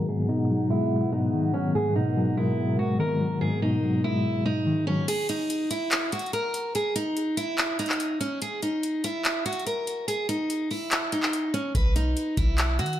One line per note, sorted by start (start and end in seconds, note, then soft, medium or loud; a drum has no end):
0.00 0.28 D#3 medium
0.00 0.48 F#3 medium
0.00 5.04 B3 medium
0.00 1.72 G#4 medium
0.00 5.04 F#5 medium
0.08 1.11 G#2 loud
0.08 0.27 G#4 medium
0.29 1.33 B2 medium
0.29 0.68 D#4 medium
0.50 1.53 F#3 medium
0.70 1.75 G#3 medium
0.70 1.10 E4 medium
1.12 1.73 G#2 medium
1.12 1.51 D#4 medium
1.33 1.96 D#3 medium
1.54 2.15 F#3 medium
1.54 1.72 C#4 medium
1.75 2.78 G#2 loud
1.75 1.93 G#4 medium
1.75 5.05 A#4 medium
1.96 2.99 B2 medium
1.96 2.35 D#4 medium
2.17 3.20 F#3 medium
2.37 3.42 G#3 medium
2.37 2.77 E4 medium
2.79 3.40 G#2 medium
2.79 2.97 F#4 medium
2.99 3.62 D#3 medium
2.99 3.39 A#4 medium
3.21 3.82 F#3 medium
3.41 4.44 G#2 loud
3.41 3.60 G#4 medium
3.62 4.66 B2 medium
3.62 4.01 D#4 medium
3.83 4.86 F#3 medium
4.04 5.08 G#3 medium
4.04 4.43 E4 medium
4.45 5.08 G#2 medium
4.45 4.85 D#4 medium
4.66 5.08 D#3 medium
4.87 5.08 F#3 medium
4.87 5.06 C#4 medium
5.08 5.26 G#4 medium
5.08 closed hi-hat medium
5.08 crash medium
5.29 5.68 D#4 medium
5.29 closed hi-hat medium
5.50 closed hi-hat medium
5.71 6.10 E4 medium
5.71 closed hi-hat medium
5.91 clap loud
5.91 closed hi-hat medium
6.12 6.31 F#4 medium
6.12 closed hi-hat medium
6.19 closed hi-hat medium
6.26 closed hi-hat soft
6.33 6.72 A#4 medium
6.33 closed hi-hat medium
6.54 closed hi-hat medium
6.75 6.93 G#4 medium
6.75 closed hi-hat medium
6.96 7.35 D#4 medium
6.96 closed hi-hat medium
7.17 closed hi-hat medium
7.37 7.76 E4 loud
7.37 closed hi-hat medium
7.58 clap loud
7.58 closed hi-hat medium
7.79 8.18 D#4 medium
7.79 closed hi-hat medium
7.86 clap medium
7.86 closed hi-hat medium
7.93 closed hi-hat soft
8.00 closed hi-hat medium
8.21 8.39 C#4 medium
8.21 closed hi-hat medium
8.42 8.60 G#4 medium
8.42 closed hi-hat medium
8.62 9.02 D#4 medium
8.62 closed hi-hat medium
8.83 closed hi-hat medium
9.04 9.43 E4 medium
9.04 closed hi-hat medium
9.25 clap loud
9.25 closed hi-hat medium
9.46 9.64 F#4 medium
9.46 closed hi-hat medium
9.53 closed hi-hat medium
9.60 closed hi-hat soft
9.67 10.06 A#4 medium
9.67 closed hi-hat medium
9.87 closed hi-hat medium
10.08 10.26 G#4 medium
10.08 closed hi-hat medium
10.29 10.68 D#4 medium
10.29 closed hi-hat medium
10.50 closed hi-hat medium
10.71 11.10 E4 medium
10.71 open hi-hat medium
10.91 clap loud
10.91 closed hi-hat medium
11.12 11.52 D#4 medium
11.12 closed hi-hat medium
11.23 clap medium
11.33 closed hi-hat medium
11.54 11.72 C#4 medium
11.54 closed hi-hat medium
11.75 12.15 B1 loud
11.75 11.93 B4 medium
11.75 kick loud
11.75 closed hi-hat medium
11.96 12.35 D#4 medium
11.96 closed hi-hat medium
12.17 closed hi-hat medium
12.37 12.81 B1 loud
12.37 12.77 E4 medium
12.37 kick medium
12.37 closed hi-hat medium
12.58 clap loud
12.58 closed hi-hat medium
12.79 12.99 D#3 loud
12.79 12.97 F#4 medium
12.79 closed hi-hat medium
12.86 closed hi-hat medium
12.93 closed hi-hat soft